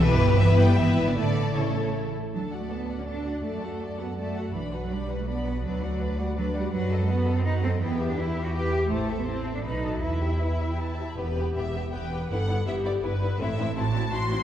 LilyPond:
<<
  \new Staff \with { instrumentName = "Violin section" } { \time 3/4 \key d \major \tempo 4 = 163 b'4 e''8 g''8 e''8. d''16 | d''4 cis''4 r4 | a''8 fis''8 a''8 fis''8 a''8 fis''8 | a''8 fis''8 a''8 fis''8 a''8 fis''8 |
b''8 fis''8 b''8 fis''8 b''8 fis''8 | d''8 fis''8 d''8 fis''8 d''8 fis''8 | \key e \minor fis''8 dis''8 fis''8 dis''8 fis''8 dis''8 | g''8 e''8 g''8 e''8 g''8 e''8 |
a''8 e''8 a''8 e''8 b''8 a''8 | e''8 g''8 e''8. g''16 a''8. b''16 | b'4 e''4 g''4 | fis''4 e''8 d''8 b'4 |
e''4 a''4 c'''4 | }
  \new Staff \with { instrumentName = "Violin section" } { \time 3/4 \key d \major g'4 b'4 b'4 | a'2~ a'8 r8 | a'8 d''8 a'8 d''8 a'8 d''8 | d''8 a'8 d''8 a'8 d''8 a'8 |
d''8 b'8 d''8 b'8 d''8 b'8 | b'8 d''8 b'8 d''8 b'8 d''8 | \key e \minor b'8 a'8 b'8 a'8 b'8 a'8 | b'8 g'8 b'8 g'8 b'8 g'8 |
c''8 a'8 c''8 a'8 b'8 a'8 | b'8 e''8 b'8 e''8 b'8 e''8 | <b g'>8 <b g'>8 <b g'>8 <b g'>8 <b g'>8 <b g'>8 | <b e'>8 <b e'>8 <b e'>8 <b e'>8 <b e'>8 <b e'>8 |
<c' e'>8 <c' e'>8 <c' e'>8 <c' e'>8 <c' e'>8 <c' e'>8 | }
  \new Staff \with { instrumentName = "Viola section" } { \time 3/4 \key d \major <b e'>4 <b e'>4 <b e'>4 | <a e'>4 <a e'>4. r8 | d'8 fis'8 d'8 fis'8 d'8 fis'8 | a'8 fis'8 a'8 fis'8 a'8 fis'8 |
d'8 fis'8 d'8 fis'8 d'8 fis'8 | d'8 fis'8 d'8 fis'8 d'8 fis'8 | \key e \minor fis'8 a'8 fis'8 a'8 fis'8 a'8 | e'8 g'8 e'8 g'8 e'8 g'8 |
e'8 a'8 e'8 a'8 dis'8 fis'8 | e'8 g'8 e'8 g'8 e'8 g'8 | g'2 b'4 | a'4 g'4 b'4 |
a'4 fis'2 | }
  \new Staff \with { instrumentName = "Cello section" } { \clef bass \time 3/4 \key d \major b,4 e8 g8 e8. d16 | d4 cis4 r4 | fis8. a16 b8. cis'16 d'4 | a4. b8 a4 |
e8. fis16 g8. a16 b4 | fis4. g8 fis8 g8 | \key e \minor fis8. a16 b8. c'16 dis'8 c'8 | b8. d'16 e'8. fis'16 g'4 |
a8. b16 c'8. d'16 dis'4 | e'2~ e'8 r8 | e,4 e,4 e,4 | g,4 g,4 g,4 |
a,4 a,4 a,4 | }
  \new Staff \with { instrumentName = "Double bass section" } { \clef bass \time 3/4 \key d \major g,,2 gis,,4 | a,,2~ a,,8 r8 | d,2. | fis,2. |
b,,2. | d,2. | \key e \minor fis,2. | e,2. |
a,,2 b,,4 | e,2~ e,8 r8 | e,,4 e,,4 e,,4 | g,,4 g,,4 g,,4 |
a,,4 a,,4 a,,4 | }
>>